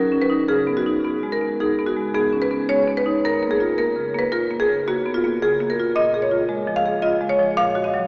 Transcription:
0.00 0.45 B2 medium
0.00 0.23 F#3 medium
0.00 0.20 A#4 medium
0.12 0.42 C#4 soft
0.22 0.48 B4 medium
0.30 0.49 D#4 medium
0.48 3.20 C#3 medium
0.48 0.76 G#4 medium
0.67 0.97 B3 medium
0.77 1.30 F#4 medium
0.86 1.16 D#4 medium
1.05 1.35 B3 soft
1.23 1.53 G#3 medium
1.32 1.59 A#4 medium
1.41 1.72 B3 soft
1.60 1.91 D#4 medium
1.60 1.87 G#4 medium
1.79 2.08 B3 medium
1.86 2.14 F#4 medium
1.97 2.26 G#3 medium
2.14 2.44 B3 medium
2.14 2.41 G#4 medium
2.33 2.51 C#4 medium
2.42 2.68 B4 medium
2.51 2.80 B3 medium
2.69 2.99 G#3 medium
2.69 2.96 C#5 medium
2.88 3.17 B3 medium
2.97 3.24 B4 medium
3.06 3.25 D#4 medium
3.25 5.92 F#2 medium
3.25 3.51 A#4 medium
3.43 3.72 A#3 medium
3.51 3.78 G#4 medium
3.60 3.90 F4 medium
3.78 4.08 A#3 medium
3.78 4.17 A#4 medium
3.96 4.25 C#3 medium
4.15 4.44 A#3 medium
4.19 4.33 B4 medium
4.32 4.62 F4 medium
4.32 4.59 A#4 medium
4.51 4.80 A#3 medium
4.60 4.86 G#4 medium
4.69 4.99 C#3 medium
4.88 5.17 A#3 medium
4.88 5.14 F#4 medium
5.06 5.24 B3 medium
5.14 5.41 F4 medium
5.24 5.53 A#3 medium
5.42 5.71 C#3 medium
5.42 5.68 G#4 medium
5.60 5.89 A#3 medium
5.70 5.95 A#4 medium
5.80 5.97 F4 medium
5.96 7.52 A#2 medium
5.96 6.21 D#5 loud
6.14 6.42 G#4 medium
6.22 6.73 C#5 medium
6.31 6.60 F4 medium
6.49 6.77 G#3 medium
6.67 6.96 F3 medium
6.76 7.02 F5 medium
6.86 7.14 G#4 medium
7.02 7.31 F4 medium
7.02 7.28 D#5 medium
7.21 7.50 G#3 medium
7.29 7.55 C#5 medium
7.39 7.57 F3 medium
7.57 8.07 A#2 medium
7.57 7.83 F5 loud
7.75 8.04 F#4 medium
7.84 8.07 D#5 medium
7.94 8.07 F#3 medium

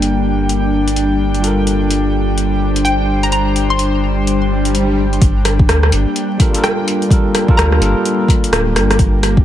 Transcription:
0.00 5.19 G1 medium
0.00 1.38 G3 medium
0.00 9.45 G3 medium
0.00 2.42 A#3 medium
0.00 9.45 D4 medium
0.00 1.41 F4 medium
0.00 1.42 A4 medium
0.00 1.43 A#4 medium
0.00 9.45 G5 medium
0.00 closed hi-hat medium
0.49 closed hi-hat soft
0.88 closed hi-hat medium
0.96 closed hi-hat medium
1.34 closed hi-hat soft
1.39 5.17 G3 medium
1.39 5.18 F4 medium
1.44 5.20 A4 medium
1.44 5.21 A#4 medium
1.44 closed hi-hat medium
1.67 closed hi-hat soft
1.91 closed hi-hat medium
2.29 6.67 C5 medium
2.38 closed hi-hat medium
2.76 closed hi-hat medium
2.85 3.23 G5 medium
2.85 closed hi-hat medium
3.23 3.29 A#5 medium
3.23 closed hi-hat soft
3.32 3.42 A#5 medium
3.32 closed hi-hat soft
3.56 closed hi-hat soft
3.70 4.35 C6 medium
3.79 closed hi-hat medium
4.27 closed hi-hat soft
4.27 swell medium
4.65 closed hi-hat soft
4.75 closed hi-hat soft
5.13 closed hi-hat soft
5.21 5.67 G1 loud
5.21 kick loud
5.21 closed hi-hat medium
5.45 cross-stick medium
5.45 open hi-hat medium
5.50 9.45 A#3 medium
5.59 kick loud
5.69 5.91 D2 medium
5.69 cross-stick loud
5.69 closed hi-hat medium
5.83 cross-stick medium
5.92 6.06 G1 medium
5.92 open hi-hat medium
6.16 closed hi-hat medium
6.38 6.49 G3 medium
6.38 6.50 F4 medium
6.38 6.51 A4 medium
6.38 6.52 A#4 medium
6.38 kick loud
6.38 open hi-hat medium
6.50 7.06 G3 medium
6.50 7.08 F4 medium
6.54 7.09 A4 medium
6.54 7.10 A#4 medium
6.54 closed hi-hat medium
6.63 7.01 G5 medium
6.63 cross-stick loud
6.63 closed hi-hat medium
6.88 open hi-hat medium
7.02 closed hi-hat soft
7.09 7.44 G3 medium
7.09 7.45 F4 medium
7.09 7.46 A4 medium
7.09 kick loud
7.09 closed hi-hat medium
7.13 7.46 A#4 medium
7.35 cross-stick soft
7.35 open hi-hat medium
7.47 7.76 G3 medium
7.47 7.79 F4 medium
7.47 7.80 A4 medium
7.47 kick loud
7.51 7.80 A#4 loud
7.57 7.80 D2 medium
7.57 7.96 A#5 medium
7.57 cross-stick loud
7.57 closed hi-hat medium
7.72 cross-stick medium
7.77 7.94 G1 medium
7.77 9.45 G3 medium
7.77 9.45 F4 medium
7.82 9.45 A4 medium
7.82 9.45 A#4 medium
7.82 open hi-hat medium
8.05 closed hi-hat medium
8.28 kick loud
8.28 open hi-hat medium
8.44 closed hi-hat medium
8.51 8.76 D1 medium
8.51 cross-stick loud
8.51 closed hi-hat medium
8.75 8.98 G1 loud
8.75 cross-stick medium
8.75 open hi-hat medium
8.91 cross-stick medium
8.91 closed hi-hat soft
8.99 9.45 G1 loud
8.99 kick loud
8.99 closed hi-hat medium
9.23 cross-stick soft
9.23 open hi-hat medium
9.37 kick loud

